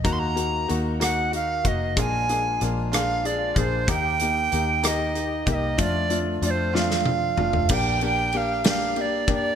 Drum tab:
CC |------------|------------|------------|------------|
RD |------------|------------|------------|------------|
HH |x-x-x-x-x-x-|x-x-x-x-x-x-|x-x-x-x-x-x-|x-x-x-------|
SD |------r-----|----r-r-----|------r-----|----r-oo----|
T1 |------------|------------|------------|--------o---|
T2 |------------|------------|------------|----------o-|
FT |------------|------------|------------|-----------o|
BD |o---------o-|o---------o-|o---------o-|o-----------|

CC |x-----------|
RD |--x-x-x-x-x-|
HH |------------|
SD |------o-----|
T1 |------------|
T2 |------------|
FT |------------|
BD |o---------o-|